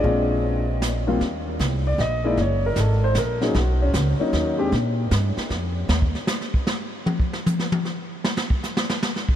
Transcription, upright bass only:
X:1
M:3/4
L:1/8
Q:"Swing" 1/4=154
K:Bbmix
V:1 name="Upright bass" clef=bass
B,,,6 | E,,2 C,,2 B,,,2 | _G,,,2 A,,,2 B,,,2 | =B,,,2 ^C,, z ^D,,2 |
B,,2 G,, z F,,2 | E,, z4 z | z6 | z6 |]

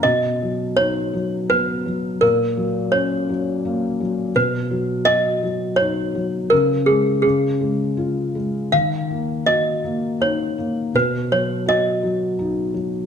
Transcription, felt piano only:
X:1
M:3/4
L:1/8
Q:1/4=83
K:Blyd
V:1 name="Felt piano" clef=bass
B,, F, D F, B, F, | A,, F, C F, A, F, | B,, F,2 F, D F, | C, G, C, G, E G, |
D, A, F A, D A, | B,, F, F F, D F, |]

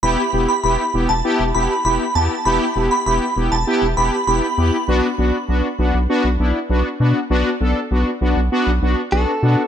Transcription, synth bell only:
X:1
M:4/4
L:1/16
Q:1/4=99
K:Em
V:1 name="Synth bell"
b2 z b b z2 a z2 b2 b z a z | b2 z b b z2 a z2 b2 b3 z | z16 | z16 |]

